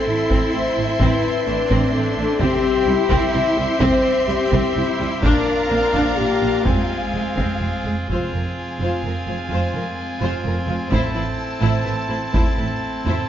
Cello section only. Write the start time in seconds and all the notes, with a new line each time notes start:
0.06 E4
1.01 E4
1.47 D4
2.40 C4
2.87 E4
3.81 C4
4.75 E4
5.22 D4
5.69 C4
6.17 A#3
6.65 G#3
8.09 F2
8.33 F2
8.80 F2
9.04 F2
9.28 F2
9.50 F2
9.74 F2
10.22 F2
10.44 F2
10.68 F2
10.91 A2
11.14 A2
11.61 A2
11.85 A2
12.09 A2
12.33 A2
12.57 A2
13.05 A2